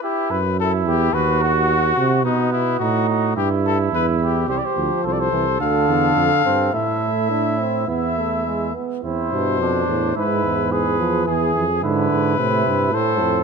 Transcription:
X:1
M:4/4
L:1/16
Q:1/4=108
K:Em
V:1 name="Trumpet"
G2 B2 A2 G2 B2 F6 | ^D2 E2 F2 F2 G2 A2 B2 G2 | [K:Am] c/2 d/2 c3 c/2 d/2 c3 f8 | e8 e6 z2 |
c8 B4 B4 | ^G4 B8 c4 |]
V:2 name="Flugelhorn"
E2 z2 E4 F8 | B,4 ^D4 E8 | [K:Am] G4 A12 | E8 E6 z2 |
E4 D4 E4 ^G4 | ^G4 E4 E4 A4 |]
V:3 name="Trombone" clef=bass
z16 | z16 | [K:Am] G,2 F,4 E,2 D,6 C2 | A,4 D2 C2 B,2 A,2 ^G,2 B,2 |
C2 B,,4 A,,2 ^G,,6 F,2 | E,4 D,4 C,4 A,,4 |]
V:4 name="Bass trombone" clef=bass
z2 F,,4 E,,2 ^D,,6 C,2 | B,,4 A,,4 G,,4 E,,4 | [K:Am] C,,2 D,,2 C,,2 C,,2 D,,2 E,,2 F,,2 G,,2 | A,,8 E,,6 z2 |
E,,2 G,,2 F,,2 E,,2 ^G,,2 E,,6 | E,,2 F,,2 ^G,,2 G,,2 A,,2 =G,,2 A,,2 F,,2 |]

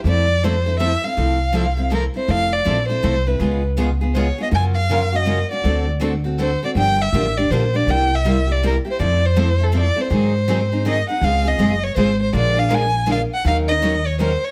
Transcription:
X:1
M:3/4
L:1/16
Q:"Swing" 1/4=161
K:F
V:1 name="Violin"
d4 c4 e2 f2- | f8 B2 c2 | f2 d4 c4 =B2- | =B2 z4 z3/2 c/2 _d2 _e2 |
_a2 f4 _e4 d2- | d2 z6 c2 d2 | g2 e4 d2 c2 d2 | g2 e4 d2 B2 c2 |
d2 c4 A2 d2 c2- | c8 _e2 _g2 | [K:Db] f2 e4 d2 c2 c2 | =d2 f2 a4 f2 g2 |
f2 e4 d2 c2 d2 |]
V:2 name="Steel-string acoustic guitar"
[F,A,CEA]2 z2 [F,A,CEA] z [CEA]2 [F,A,CEA] z [CEA]2 | [F,A,CEA]2 z2 [F,A,CEA] z [CEA]2 [F,A,CEA] z [CEA]2 | [F,A,CEA]2 z2 [F,A,CEA] z [CEA]2 [F,A,CEA] z [CEA]2 | [_D,_A,_CF_A]2 z2 [D,A,CFA] z [CFA]2 [D,A,CFA] z [CFA]2 |
[_D,F,B,_D_G]2 z2 [D,F,B,DG] z [B,DG]2 [D,F,B,DG] z [B,DG]2 | [D,A,C^FA]2 z2 [D,A,CFA] z [CFA]2 [D,A,CFA] z [CFA]2 | [D,F,B,DG]2 z2 [D,F,B,DG] z [B,DG]2 [D,F,B,DG] z [B,DG]2 | [C,G,B,EG]2 z2 [C,G,B,EG] z [B,EG]2 [C,G,B,EG] z [B,EG]2 |
[F,A,CEA]2 z2 [F,A,CEA] z [CEA]2 [F,A,CEA] z [CEA]2 | [_E,_G,C_E_A]2 z2 [E,G,CEA] z [CEA]2 [E,G,CEA] z [CEA]2 | [K:Db] [D,A,CFA]2 [CFA]2 [D,A,CFA] z3 [D,A,CFA] z3 | [=D,F,B,=DA]2 [B,DA]2 [D,F,B,DA] z3 [D,F,B,DA] z3 |
[E,G,DEB]2 [DEB]2 [E,G,DEB] z3 [E,G,DEB] z3 |]
V:3 name="Steel-string acoustic guitar"
[F,CEA]2 z2 [F,CEA] z3 [F,CEA] z3 | [F,CEA]2 z2 [F,CEA] z3 [F,CEA] z3 | [F,CEA]2 z2 [F,CEA] z3 [F,CEA] z3 | [_D,_A,_CF_A]2 z2 [D,A,CFA] z3 [D,A,CFA] z3 |
[_G,_DFB]2 z2 [G,DFB] z3 [G,DFB] z3 | [D,A,C^FA]2 z2 [D,A,CFA] z3 [D,A,CFA] z3 | [D,F,B,DG]2 z2 [D,F,B,DG] z3 [D,F,B,DG] z3 | [C,G,B,EG]2 z2 [C,G,B,EG] z3 [C,G,B,EG] z3 |
[F,CEA]2 z2 [F,CEA] z3 [F,CEA] z3 | [_E,_G,C_E_A]2 z2 [E,G,CEA] z3 [E,G,CEA] z3 | [K:Db] [D,A,CFA]2 z2 [D,A,CFA] z3 [D,A,CFA] z3 | [F,A,=DFB]2 z2 [F,A,DFB] z3 [F,A,DFB] z3 |
[E,G,DEB]2 z2 [E,G,DEB] z3 [E,G,DEB] z3 |]
V:4 name="Upright bass" clef=bass
F,,12 | C,,12 | F,,,4 B,,,4 C,,4 | _D,,12 |
_G,,12 | D,,12 | G,,,4 A,,,4 B,,,4 | C,,12 |
F,,12 | _A,,12 | [K:Db] D,,4 G,,,4 A,,,4 | B,,,12 |
E,,12 |]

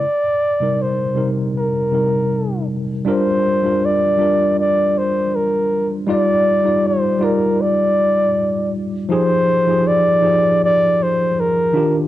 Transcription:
X:1
M:4/4
L:1/16
Q:"Swing 16ths" 1/4=79
K:Fdor
V:1 name="Flugelhorn"
d4 c2 z2 B6 z2 | c4 d4 d2 c2 B3 z | d4 c2 B2 d6 z2 | c4 d4 d2 c2 B3 z |]
V:2 name="Tine electric piano"
z3 [C,G,EB]2 z [C,G,EB]3 z [C,G,EB]4 z2 | [G,DFB]2 z [G,DFB]2 z [G,DFB]6 z4 | [G,EFd]2 z [G,EFd]2 z [G,EFd]6 z4 | [F,EGA]2 z [F,EGA]2 z [F,EGA]6 z2 [E,DFG]2 |]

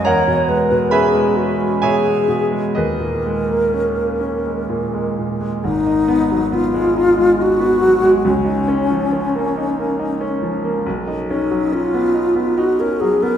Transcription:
X:1
M:3/4
L:1/16
Q:1/4=68
K:G#m
V:1 name="Alto flute"
c2 B2 G2 F2 G2 z2 | A8- A2 z2 | D4 ^E4 F4 | C12 |
z2 D2 ^E4 F A G A |]
V:2 name="Grand piano"
[Adfa]4 [Begb]4 [Gceg]4 | [GBd]8 z4 | z12 | z12 |
z12 |]
V:3 name="Grand piano"
E,, B,, G, B,, C G, C G, B,, G, B,, G, | D,, A,, G, A, C A, C G, A,, G, A,, G, | G,,, D B, F, B, G, D G, D B, F, G, | C,, D C ^E, C A, D A, D C E, A, |
B,,, D C F, C B, D B, D C F, B, |]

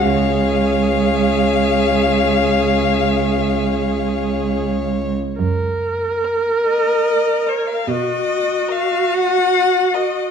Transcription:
X:1
M:12/8
L:1/16
Q:3/8=46
K:C#mix
V:1 name="Violin"
e16- e6 z2 | z6 d4 c e d4 e2 f4 d2 |]
V:2 name="Violin"
c16- c6- c z | z4 A2 z4 A2 z4 A2 z4 A2 |]
V:3 name="Viola"
G16- G4- G z3 | A12 F12 |]
V:4 name="Cello" clef=bass
C,,16- C,,6- C,, z | F,,6 z6 B,,6 z6 |]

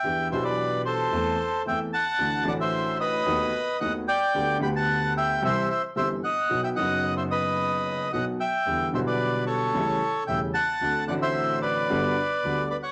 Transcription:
X:1
M:4/4
L:1/16
Q:1/4=111
K:Em
V:1 name="Bandoneon"
[eg]2 [ce] [Bd]3 [Ac]6 [eg]2 [fa]2- | [fa]2 [df] [ce]3 [B^d]6 [df]2 [=dg]2- | [dg]2 [gb] [fa]3 [eg]2 [ce]2 [ce]2 [ce]2 [^df]2- | [^df] [eg] [df]3 [ce] [Bd]6 [df]2 [eg]2- |
[eg]2 [ce] [Bd]3 [A^c]6 [eg]2 [fa]2- | [fa]2 [df] [ce]3 [Bd]8 [Bd] [^cf] |]
V:2 name="Grand piano" clef=bass
[E,,E,B,DG]2 [B,,,B,,E,B,DG]6 [E,,E,A,CA]2 z2 [E,,E,A,CA]2 z2 | [D,,D,E,A,DF]2 [A,,,A,,E,A,DF]6 [^D,,^D,A,B,F]2 z2 [D,,D,A,B,F]2 z2 | [D,,D,A,B,G]2 [D,,D,A,B,G]6 [C,,C,E,G,CG]2 z2 [G,,,G,,E,G,CG]2 z2 | [B,,,B,,^D,F,B,F]2 [F,,,F,,D,F,B,F]8- [F,,,F,,D,F,B,F]2 [B,,,B,,D,F,B,F]2 z2 |
[E,,D,E,G,B,E]2 [B,,,B,,D,G,B,E]6 [A,,,A,,^C,G,A,E]2 z2 [E,,,E,,C,G,A,E]2 z2 | [D,,D,A,CF]2 [A,,,A,,D,A,CF]6 [G,,,G,,D,G,B,F]2 z2 [D,,D,G,B,F]2 z2 |]
V:3 name="Double bass" clef=bass
E,,2 B,,,6 E,,2 z2 E,,2 z2 | D,,2 A,,,6 ^D,,2 z2 D,,2 z2 | D,,2 D,,6 C,,2 z2 G,,,2 z2 | B,,,2 F,,,8- F,,,2 B,,,2 z2 |
E,,2 B,,,6 A,,,2 z2 E,,,2 z2 | D,,2 A,,,6 G,,,2 z2 D,,2 z2 |]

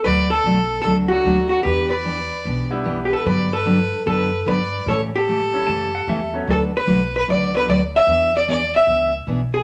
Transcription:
X:1
M:4/4
L:1/16
Q:"Swing" 1/4=150
K:D
V:1 name="Electric slide guitar"
z16 | z16 | z16 | z8 a2 f2 e3 z |
z16 | z16 |]
V:2 name="Fiddle"
d2 A6 A2 F4 F2 | B2 d8 z3 z/2 B/2 B2 | d2 B6 B4 d4 | c2 A12 z2 |
A2 B4 B2 d2 B2 d2 e2- | e2 d2 d2 e4 z4 ^G2 |]
V:3 name="Hollow-body jazz guitar"
B2 A6 A2 F4 F2 | G2 B8 z3 z/2 G/2 A2 | B2 A6 A4 B4 | A2 G12 z2 |
A2 B4 B2 d2 B2 d2 e2- | e2 d2 d2 e4 z4 ^G2 |]
V:4 name="Steel-string acoustic guitar"
[D,F,A,DF]2 z2 [D,F,A,DF]2 z2 [D,F,A,DF]2 z2 [D,F,A,DF]2 z2 | [E,B,DG]2 z2 [E,B,DG]2 z2 [E,B,DG]2 z2 [E,B,DG]2 z2 | [D,F,B,DG]2 z2 [D,F,B,DG]2 z2 [D,F,B,DG]2 z2 [D,F,B,DG]2 z2 | [C,E,A,CG]2 z2 [C,E,A,CG]2 z2 [C,E,A,CG]2 z2 [C,E,A,CG]2 z2 |
[D,F,A,DFB]2 z2 [D,F,A,DFB]2 z2 [D,F,A,DFB]2 z2 [D,F,A,DFB]2 z2 | [E,B,D^G]2 z2 [E,B,DG]2 z2 [E,B,DG]2 z2 [E,B,DG]2 z2 |]
V:5 name="Upright piano"
z8 z2 [F,A,DF]6 | z8 z2 [G,B,DE]6 | z16 | z6 [G,A,CE]2 z6 [F,A,B,C]2 |
z8 z2 [F,A,B,D]2 z4 | z16 |]
V:6 name="Upright bass" clef=bass
D,,4 B,,,4 C,,4 D,,4 | E,,8 B,,,8 | G,,8 F,,4 G,,4 | A,,8 F,,4 E,,4 |
D,,4 B,,,4 C,,4 D,,4 | E,,8 C,,4 B,,,4 |]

